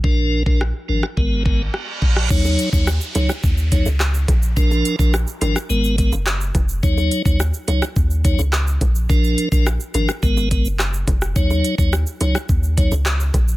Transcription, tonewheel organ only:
\new Staff \with { instrumentName = "Tonewheel organ" } { \time 4/4 \key ees \minor \tempo 4 = 106 <f d' bes'>8. <f d' bes'>16 r8 <f d' bes'>16 r16 <aes ces' bes'>8 <aes ces' bes'>16 r4 r16 | <ges ees' des''>8. <ges ees' des''>16 r8 <ges ees' des''>16 r8. <ges ees' des''>16 r4 r16 | <f d' bes'>8. <f d' bes'>16 r8 <f d' bes'>16 r16 <aes ces' bes'>8 <aes ces' bes'>16 r4 r16 | <ges ees' des''>8. <ges ees' des''>16 r8 <ges ees' des''>16 r8. <ges ees' des''>16 r4 r16 |
<f d' bes'>8. <f d' bes'>16 r8 <f d' bes'>16 r16 <aes ces' bes'>8 <aes ces' bes'>16 r4 r16 | <ges ees' des''>8. <ges ees' des''>16 r8 <ges ees' des''>16 r8. <ges ees' des''>16 r4 r16 | }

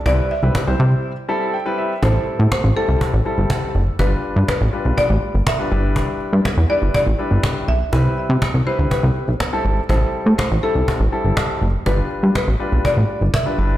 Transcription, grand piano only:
\new Staff \with { instrumentName = "Grand piano" } { \time 4/4 \key a \minor \tempo 4 = 122 << { r2 r8 b''8 g''8 e''8 | r1 | r1 | r1 |
r1 | r1 | r1 | } \\ { <g c' e' b'>8 r16 <g c' e' b'>16 r16 <g c' e' c''>4 r16 <g c' e' a'>8 r16 <g c' e' b'>8 r16 | <g c' e' a'>4 r8 <g c' e' a'>8. r16 <g c' e' a'>4 r8 | <g d' f' b'>4 r8 <g d' f' b'>4~ <g d' f' b'>16 r8 <g d' f' b'>16 <g d' e' b'>8~ | <g d' e' b'>4 r8 <g d' e' b'>8. r16 <g d' e' b'>4 r8 |
<g c' e' b'>4 r8 <g c' e' b'>4~ <g c' e' b'>16 r8 <g c' e' a'>8 r16 | <g c' e' a'>4 r8 <g c' e' a'>8. r16 <g c' e' a'>4 r8 | <g d' f' b'>4 r8 <g d' f' b'>4~ <g d' f' b'>16 r8 <g d' f' b'>16 <g d' e' b'>8 | } >> }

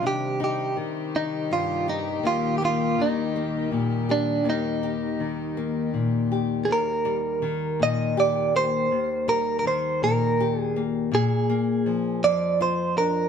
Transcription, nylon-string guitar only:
\new Staff \with { instrumentName = "Nylon-string guitar" } { \clef bass \time 6/8 \key ees \major \tempo 4. = 54 << { <d' ees'>8 ees'2 ees'8 | bes8 bes4 bes4 g'8 | bes8 g'4 bes4 g'8 | r8 g4. g'8 bes8~ |
bes8 g4. g'8 bes8~ | bes8 bes4. f'8 d'8 | } \\ { c4 ees4 g,4 | ees,4 ees4 bes,4 | ees,4 ees4 bes,4 | ees,4 ees8 bes,4. |
ees,4 ees8 bes,4. | bes,4 f8 f,4. | } >> }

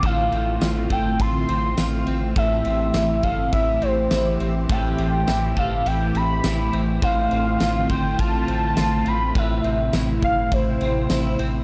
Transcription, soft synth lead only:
\new Staff \with { instrumentName = "Soft synth lead" } { \time 4/4 \key a \minor \tempo 4 = 103 f''4 r8 g''8 c'''4. r8 | e''4. f''8 e''8 c''4 r8 | g''4. f''8 g''8 b''4 r8 | f''4. g''8 a''4. b''8 |
e''4 r8 f''8 c''4. r8 | }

